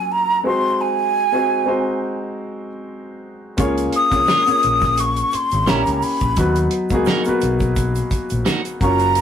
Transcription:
Already playing: grand piano F#3 A#3 C#4 F4 A#4, flute G#5
0.12 flute A#5
0.44 grand piano G#3 C4 D#4 F#4 C5, flute C6
0.81 flute G#5
1.32 grand piano G#3 C4 D#4 F#4 C5
1.66 grand piano G#3 C4 D#4 F#4 C5
3.57 fingered electric bass C#2, grand piano A#3 C#4 F4 G#4 C#5, kick, closed hi-hat, shaker
3.78 closed hi-hat, shaker
3.93 flute D#6, closed hi-hat
4.10 fingered electric bass C2, grand piano A#3 C#4 F4 G#4 C#5, kick, snare, closed hi-hat, shaker
4.28 clean electric guitar G#3 C#4 F4 A#4, snare, shaker
4.46 grand piano A#3 C#4 F4 G#4 C#5, muted fingered electric bass stroke, closed hi-hat, shaker
4.62 fingered electric bass A#1, closed hi-hat, shaker
4.81 kick, snare, closed hi-hat, shaker
4.97 flute C#6, closed hi-hat, shaker
5.17 closed hi-hat, shaker
5.32 flute C6, muted fingered electric bass stroke, closed hi-hat, shaker
5.51 fingered electric bass G#1, closed hi-hat, shaker
5.66 fingered electric bass A#1, clean electric guitar G3 C#4 E4 A#4, grand piano A#3 C#4 E4 G4 C#5, flute A#5, snare, shaker
5.86 fingered electric bass C#2, closed hi-hat, shaker
6.02 flute B5, open hi-hat, shaker
6.20 fingered electric bass A#1, kick, closed hi-hat, shaker
6.36 fingered electric bass D#2, grand piano F#3 B3 D#4 F#4 B4, kick, closed hi-hat, shaker
6.55 closed hi-hat, shaker
6.71 closed hi-hat
6.90 fingered electric bass C#2, grand piano A#3 B3 D#4 F#4, kick, closed hi-hat, shaker
6.94 grand piano G#4
7.05 clean electric guitar A#3 D#4 F#4 A#4, snare, shaker
7.25 grand piano B3 D#4 F#4 A#4, muted fingered electric bass stroke, closed hi-hat, shaker
7.29 grand piano B4
7.41 fingered electric bass B1, closed hi-hat, shaker
7.60 kick, closed hi-hat, shaker
7.76 kick, closed hi-hat, shaker
7.95 closed hi-hat, shaker
8.11 kick, closed hi-hat, shaker
8.30 fingered electric bass A#1, closed hi-hat, shaker
8.45 clean electric guitar A#3 D#4 F#4 A#4, snare, shaker
8.65 closed hi-hat, shaker
8.80 fingered electric bass F#1, grand piano A#3 C#4 F4 F#4 C#5, flute A#5, kick, closed hi-hat, shaker
8.99 closed hi-hat, shaker
9.15 closed hi-hat, shaker

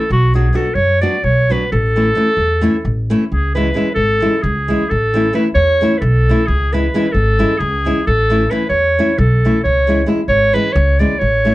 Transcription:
Already playing: clarinet A4
0.10 upright bass B1, clarinet F#4
0.34 nylon-string guitar F#3 B3 D4 F#4, clarinet G#4
0.53 nylon-string guitar F#3 B3 D4 F#4, clarinet A4
0.74 upright bass F#2, clarinet C#5
1.01 nylon-string guitar F#3 B3 D4 F#4, clarinet D5
1.24 upright bass B1, clarinet C#5
1.50 nylon-string guitar F#3 B3 D4 F#4, clarinet B4
1.72 upright bass A1, clarinet A4
1.96 nylon-string guitar E3 A3 C#4 E4
2.15 nylon-string guitar E3 A3 C#4 E4
2.37 upright bass E2
2.61 nylon-string guitar E3 A3 C#4 E4
2.85 upright bass A1
3.10 nylon-string guitar E3 A3 C#4 E4
3.32 upright bass C#2, clarinet G#4
3.55 nylon-string guitar E3 G#3 C#4 E4, clarinet B4
3.74 nylon-string guitar E3 G#3 C#4 E4
3.94 upright bass G#1, clarinet A4
4.20 nylon-string guitar E3 G#3 C#4 E4
4.42 upright bass C#2, clarinet G#4
4.68 nylon-string guitar E3 G#3 C#4 E4
4.89 upright bass A1, clarinet A4
5.14 nylon-string guitar E3 A3 C#4 E4
5.33 nylon-string guitar E3 A3 C#4 E4, clarinet B4
5.55 upright bass E2, clarinet C#5
5.81 nylon-string guitar E3 A3 C#4 E4
5.98 upright bass B1, clarinet A4 B4
6.29 nylon-string guitar E3 A3 C#4 E4
6.47 upright bass C#2, clarinet G#4
6.73 nylon-string guitar E3 G#3 C#4 E4, clarinet B4
6.94 nylon-string guitar E3 G#3 C#4 E4
7.12 upright bass G#1, clarinet A4
7.39 nylon-string guitar E3 G#3 C#4 E4
7.58 upright bass C#2, clarinet G#4
7.85 nylon-string guitar E3 G#3 C#4 E4
8.07 upright bass A1, clarinet A4
8.30 nylon-string guitar E3 A3 C#4 E4
8.51 nylon-string guitar E3 A3 C#4 E4, clarinet B4
8.69 upright bass E2, clarinet C#5
8.99 nylon-string guitar E3 A3 C#4 E4
9.18 upright bass B1, clarinet A4
9.45 nylon-string guitar E3 A3 C#4 E4
9.64 upright bass C#2, clarinet C#5
9.87 nylon-string guitar E3 G#3 C#4 E4
10.06 nylon-string guitar E3 G#3 C#4 E4
10.28 upright bass G#1, clarinet C#5
10.53 nylon-string guitar E3 G#3 C#4 E4, clarinet B4
10.73 upright bass C#2, clarinet C#5
10.99 nylon-string guitar E3 G#3 C#4 E4, clarinet D5
11.19 upright bass A1, clarinet C#5
11.45 nylon-string guitar E3 A3 C#4 E4

